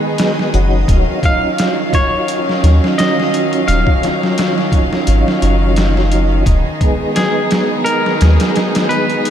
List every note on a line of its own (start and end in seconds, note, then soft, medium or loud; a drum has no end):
0.00 9.30 D#3 medium
0.00 0.50 G#3 medium
0.00 0.50 B3 medium
0.00 0.51 D#4 medium
0.00 0.84 D#4 medium
0.00 0.51 G#4 medium
0.00 0.84 G#4 medium
0.00 0.84 B4 medium
0.00 9.30 D#5 medium
0.18 snare loud
0.18 closed hi-hat medium
0.39 snare soft
0.54 0.84 F#1 loud
0.54 1.19 F#3 medium
0.54 1.19 C#4 medium
0.54 1.20 D#4 medium
0.54 1.20 F#4 loud
0.54 closed hi-hat medium
0.88 1.05 D#1 loud
0.88 6.42 F#3 medium
0.88 6.42 C#4 medium
0.88 6.42 F5 medium
0.88 kick loud
0.88 closed hi-hat medium
1.22 3.28 F#3 medium
1.22 3.28 C#4 medium
1.22 3.29 D#4 medium
1.22 3.29 F4 medium
1.22 1.94 F5 loud
1.22 kick medium
1.22 closed hi-hat medium
1.58 snare loud
1.58 closed hi-hat medium
1.93 2.98 C#5 loud
1.93 kick medium
1.93 closed hi-hat medium
2.28 closed hi-hat medium
2.49 snare soft
2.63 2.80 D#2 loud
2.63 snare medium
2.63 closed hi-hat medium
2.84 snare medium
2.98 3.64 D#5 loud
2.98 snare loud
2.98 closed hi-hat medium
3.20 snare medium
3.33 3.99 F#3 medium
3.33 3.99 C#4 medium
3.33 3.99 D#4 medium
3.33 3.99 F4 medium
3.33 closed hi-hat medium
3.53 closed hi-hat soft
3.68 3.84 D#1 loud
3.68 5.03 F5 loud
3.68 closed hi-hat medium
3.87 kick loud
4.01 6.44 F#3 medium
4.01 6.45 C#4 medium
4.01 6.45 D#4 medium
4.01 6.45 F4 loud
4.01 snare medium
4.01 closed hi-hat medium
4.23 snare soft
4.38 snare loud
4.38 closed hi-hat medium
4.58 snare soft
4.72 kick loud
4.72 closed hi-hat medium
4.93 snare medium
5.07 5.24 G#1 medium
5.07 closed hi-hat medium
5.28 snare soft
5.42 6.43 F#1 medium
5.42 closed hi-hat medium
5.76 snare loud
5.76 closed hi-hat medium
5.97 snare soft
6.12 closed hi-hat medium
6.46 6.63 D#1 loud
6.46 9.30 B3 medium
6.46 9.30 D#4 medium
6.46 9.30 G#4 medium
6.46 kick loud
6.46 closed hi-hat medium
6.81 8.87 G#3 medium
6.81 8.87 B3 medium
6.81 8.87 D#4 medium
6.81 8.88 G#4 medium
6.81 kick medium
6.81 closed hi-hat medium
7.16 7.84 G#4 medium
7.16 snare loud
7.16 closed hi-hat medium
7.51 snare loud
7.51 closed hi-hat medium
7.85 8.89 A#4 loud
7.85 closed hi-hat medium
8.06 snare soft
8.21 8.38 D#2 loud
8.21 snare loud
8.21 closed hi-hat medium
8.40 snare loud
8.40 closed hi-hat medium
8.56 snare medium
8.56 closed hi-hat medium
8.75 snare loud
8.75 closed hi-hat medium
8.89 9.30 G#3 medium
8.89 9.30 B3 medium
8.89 9.30 D#4 medium
8.89 9.30 G#4 medium
8.89 9.30 B4 loud
8.89 closed hi-hat medium
9.10 closed hi-hat soft
9.25 closed hi-hat medium